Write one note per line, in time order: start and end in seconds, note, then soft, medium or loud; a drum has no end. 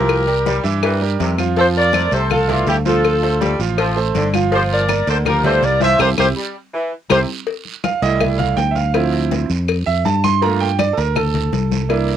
0.00 0.58 C2 loud
0.00 0.21 F3 loud
0.00 0.21 F3 medium
0.00 0.21 E4 loud
0.00 0.62 G4 medium
0.00 0.61 A#4 medium
0.00 0.21 E5 medium
0.09 cowbell loud
0.09 high conga soft
0.09 long guiro medium
0.09 claves medium
0.27 0.58 G3 medium
0.27 0.58 G4 medium
0.27 0.58 A#4 medium
0.27 cowbell medium
0.27 high conga soft
0.46 0.65 G3 medium
0.46 cowbell medium
0.46 high conga loud
0.46 short guiro medium
0.64 1.16 G2 medium
0.64 0.79 E3 loud
0.64 0.79 E4 medium
0.64 0.79 E5 medium
0.64 high conga soft
0.64 short guiro medium
0.82 1.03 E3 loud
0.82 0.98 G3 medium
0.82 0.98 G4 medium
0.82 0.98 A#4 medium
0.82 cowbell loud
0.82 long guiro medium
0.82 claves medium
1.01 1.32 G3 medium
1.01 1.32 G4 medium
1.01 1.32 A#4 medium
1.01 high conga soft
1.20 2.06 F2 loud
1.20 1.39 C3 medium
1.20 cowbell medium
1.20 high conga medium
1.20 short guiro medium
1.38 1.53 F3 loud
1.38 1.54 F4 medium
1.38 1.54 F5 medium
1.38 high conga medium
1.38 short guiro medium
1.38 claves medium
1.56 1.87 F3 medium
1.56 1.88 F3 medium
1.56 1.87 F4 medium
1.56 1.67 A4 medium
1.56 1.67 C5 loud
1.56 1.87 F5 medium
1.56 cowbell medium
1.56 high conga soft
1.56 long guiro medium
1.75 2.11 A#4 medium
1.75 2.11 D5 loud
1.75 high conga soft
1.93 2.24 A3 medium
1.93 2.24 A4 medium
1.93 2.24 C5 medium
1.93 cowbell medium
1.93 high conga loud
1.93 short guiro medium
1.93 claves medium
2.11 2.63 C2 medium
2.11 2.31 C3 medium
2.11 2.30 A4 medium
2.11 2.30 C5 loud
2.11 cowbell medium
2.11 high conga soft
2.11 short guiro medium
2.30 2.45 F3 medium
2.30 2.46 F4 medium
2.30 2.48 F4 medium
2.30 2.48 A4 loud
2.30 2.46 F5 medium
2.30 cowbell medium
2.30 high conga soft
2.30 low conga medium
2.30 long guiro medium
2.30 claves medium
2.48 2.68 E3 medium
2.48 2.79 A3 medium
2.48 2.68 D4 medium
2.48 2.68 F4 medium
2.48 2.79 A4 loud
2.48 2.79 F5 loud
2.48 cowbell medium
2.48 high conga soft
2.48 low conga medium
2.67 3.54 D2 loud
2.67 2.77 E4 medium
2.67 2.76 G4 medium
2.67 cowbell medium
2.67 high conga medium
2.67 short guiro medium
2.86 3.16 F3 loud
2.86 3.17 F3 medium
2.86 3.16 F4 loud
2.86 3.57 F4 medium
2.86 3.56 A4 loud
2.86 3.16 F5 medium
2.86 high conga medium
2.86 short guiro medium
3.04 cowbell medium
3.04 long guiro medium
3.04 claves medium
3.23 3.53 A3 medium
3.23 3.53 A4 medium
3.23 3.53 C5 medium
3.23 cowbell medium
3.23 high conga soft
3.41 3.61 G3 medium
3.41 cowbell medium
3.41 high conga loud
3.41 short guiro medium
3.59 4.11 A1 medium
3.59 3.75 F3 medium
3.59 3.75 F4 medium
3.59 3.75 F5 medium
3.59 short guiro medium
3.78 3.97 F3 loud
3.78 3.93 A3 medium
3.78 3.93 A4 medium
3.78 3.93 C5 medium
3.78 cowbell loud
3.78 high conga soft
3.78 long guiro medium
3.78 claves medium
3.96 4.27 A3 medium
3.96 4.27 A4 medium
3.96 4.27 C5 loud
3.96 high conga soft
4.15 5.01 G1 loud
4.15 4.34 D3 medium
4.15 cowbell medium
4.15 high conga medium
4.15 short guiro medium
4.33 4.49 F3 loud
4.33 4.49 F4 medium
4.33 4.49 F5 loud
4.33 high conga medium
4.33 short guiro medium
4.33 claves medium
4.52 4.83 F3 loud
4.52 4.82 F3 medium
4.52 4.82 F4 medium
4.52 4.62 G4 medium
4.52 4.62 C5 medium
4.52 4.82 F5 medium
4.52 cowbell loud
4.52 high conga soft
4.52 long guiro medium
4.70 5.06 A#4 medium
4.70 5.06 D5 loud
4.70 high conga soft
4.89 5.19 A#3 medium
4.89 5.19 A#4 medium
4.89 5.19 D5 medium
4.89 cowbell medium
4.89 high conga loud
4.89 short guiro medium
4.89 claves medium
5.07 5.59 D2 medium
5.07 5.27 D3 medium
5.07 5.17 A4 medium
5.07 5.17 C5 medium
5.07 cowbell medium
5.07 high conga soft
5.07 short guiro medium
5.25 5.40 F3 medium
5.25 5.41 F4 medium
5.25 5.44 G4 medium
5.25 5.43 A#4 loud
5.25 5.41 F5 medium
5.25 cowbell loud
5.25 high conga soft
5.25 low conga medium
5.25 long guiro medium
5.25 claves medium
5.43 5.63 E3 medium
5.43 5.74 G3 loud
5.43 5.74 G4 loud
5.43 5.62 A4 medium
5.43 5.62 C5 loud
5.43 5.75 F5 medium
5.43 cowbell medium
5.43 high conga soft
5.43 low conga medium
5.62 5.97 C2 loud
5.62 5.82 A#4 medium
5.62 5.81 D5 loud
5.62 cowbell medium
5.62 high conga medium
5.62 short guiro medium
5.80 5.96 E3 medium
5.80 6.12 F3 medium
5.80 5.96 E4 loud
5.80 5.99 C5 medium
5.80 5.96 E5 loud
5.80 5.99 E5 loud
5.80 high conga loud
5.80 short guiro medium
5.99 6.13 C2 loud
5.99 6.11 C4 loud
5.99 6.11 E4 loud
5.99 6.11 G4 loud
5.99 6.09 G4 medium
5.99 6.09 A#4 loud
5.99 6.09 C5 loud
5.99 cowbell medium
5.99 high conga loud
5.99 long guiro loud
5.99 claves loud
6.17 6.32 C2 loud
6.17 6.29 C4 loud
6.17 6.29 E4 loud
6.17 6.29 G4 loud
6.17 6.27 G4 loud
6.17 6.27 A#4 medium
6.17 6.27 C5 loud
6.17 cowbell loud
6.17 high conga loud
6.17 long guiro loud
6.17 claves medium
6.36 6.56 G3 medium
6.73 6.92 E3 medium
7.09 7.24 C2 loud
7.09 7.29 C3 medium
7.09 7.22 C4 loud
7.09 7.22 E4 medium
7.09 7.22 G4 medium
7.09 7.19 G4 loud
7.09 7.19 A#4 loud
7.09 7.19 C5 loud
7.09 cowbell loud
7.09 high conga loud
7.09 long guiro loud
7.09 claves loud
7.47 cowbell loud
7.47 high conga soft
7.47 long guiro medium
7.65 high conga soft
7.84 8.02 F5 medium
7.84 cowbell medium
7.84 high conga loud
7.84 short guiro medium
7.84 claves medium
8.02 8.54 C2 loud
8.02 8.55 G3 medium
8.02 8.55 A3 medium
8.02 8.55 E4 medium
8.02 8.20 D#5 medium
8.02 cowbell medium
8.02 short guiro medium
8.20 8.38 E5 medium
8.20 cowbell loud
8.20 high conga soft
8.20 low conga medium
8.20 long guiro medium
8.20 claves medium
8.38 8.57 F5 medium
8.38 cowbell medium
8.38 high conga soft
8.38 low conga medium
8.57 9.44 D2 loud
8.57 8.75 G5 medium
8.57 cowbell medium
8.57 high conga medium
8.57 short guiro medium
8.71 8.74 E5 medium
8.75 9.10 F5 medium
8.75 high conga medium
8.75 short guiro medium
8.94 9.47 F3 medium
8.94 9.47 C4 medium
8.94 9.47 E4 medium
8.94 cowbell loud
8.94 high conga soft
8.94 long guiro medium
8.94 claves medium
9.13 cowbell medium
9.13 high conga soft
9.31 cowbell medium
9.31 high conga loud
9.31 short guiro medium
9.49 9.84 F2 loud
9.49 high conga soft
9.49 short guiro medium
9.68 cowbell loud
9.68 high conga soft
9.68 long guiro medium
9.68 claves medium
9.86 10.04 F2 medium
9.86 10.04 E5 loud
9.86 high conga soft
10.05 10.91 G2 loud
10.05 10.23 A5 medium
10.05 cowbell medium
10.05 high conga medium
10.05 short guiro medium
10.24 10.42 C6 loud
10.24 high conga medium
10.24 short guiro medium
10.24 claves medium
10.42 10.67 A3 medium
10.42 10.67 A#3 medium
10.42 10.67 F4 medium
10.42 10.60 A#5 medium
10.42 cowbell loud
10.42 long guiro medium
10.60 10.79 G5 medium
10.79 10.97 D5 medium
10.79 cowbell medium
10.79 high conga loud
10.79 short guiro medium
10.79 claves medium
10.93 10.96 A4 medium
10.97 11.49 D2 loud
10.97 11.16 A#4 medium
10.97 cowbell medium
10.97 high conga soft
10.97 short guiro medium
11.16 12.17 A4 medium
11.16 cowbell medium
11.16 high conga soft
11.16 low conga medium
11.16 long guiro medium
11.16 claves medium
11.34 cowbell medium
11.34 high conga soft
11.34 low conga medium
11.53 12.17 C2 loud
11.53 cowbell medium
11.53 high conga medium
11.53 short guiro medium
11.72 high conga medium
11.72 short guiro medium
11.89 12.17 A#3 medium
11.89 12.17 D4 medium
11.89 12.17 E4 medium
11.89 cowbell medium
11.89 high conga soft
11.89 long guiro medium
11.89 claves medium
12.09 cowbell medium